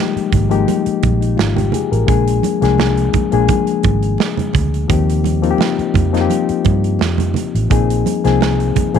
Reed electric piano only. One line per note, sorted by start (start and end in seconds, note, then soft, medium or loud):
0.00 0.50 F3 medium
0.00 2.10 G3 soft
0.00 0.50 G#3 medium
0.00 0.50 A#3 medium
0.00 0.51 D#4 medium
0.00 0.51 G4 medium
0.50 1.56 F3 medium
0.50 1.57 G#3 medium
0.50 1.57 A#3 medium
0.50 1.02 D#4 medium
0.50 1.03 G4 medium
1.21 1.36 D#4 soft
1.37 1.55 F4 medium
1.56 1.72 G4 medium
1.73 1.91 G#4 medium
1.92 2.25 A#4 medium
2.07 2.48 F3 medium
2.07 2.48 G#3 medium
2.07 2.48 A#3 medium
2.07 2.48 D4 medium
2.07 2.48 G#4 medium
2.61 3.13 F3 medium
2.61 3.14 G#3 medium
2.61 3.14 A#3 medium
2.61 3.14 D4 medium
2.61 3.14 G#4 medium
3.32 4.38 F3 medium
3.32 4.38 G#3 medium
3.32 4.39 A#3 medium
3.32 4.39 D4 medium
3.32 4.39 G#4 medium
4.88 5.29 F3 medium
4.88 5.29 A#3 medium
4.88 5.30 C4 medium
4.88 5.30 D#4 medium
4.88 5.30 G4 medium
5.42 5.95 F3 medium
5.42 5.95 A#3 medium
5.42 5.95 C4 medium
5.42 5.95 D#4 medium
5.42 5.50 F4 medium
5.51 5.99 G4 medium
6.13 7.19 F3 medium
6.13 7.20 A#3 medium
6.13 7.20 C4 medium
6.13 7.20 D#4 medium
6.13 6.20 F4 medium
6.21 7.23 G4 medium
7.70 8.11 F3 medium
7.70 8.11 A#3 medium
7.70 8.11 C4 medium
7.70 8.11 D#4 medium
7.70 8.11 G#4 medium
8.24 8.76 F3 medium
8.24 8.76 A#3 medium
8.24 8.77 C4 medium
8.24 8.77 D#4 medium
8.24 8.77 G#4 medium
8.94 8.99 F3 medium
8.94 8.99 A#3 medium
8.94 8.99 C4 medium
8.94 8.99 D#4 medium
8.94 8.99 G#4 medium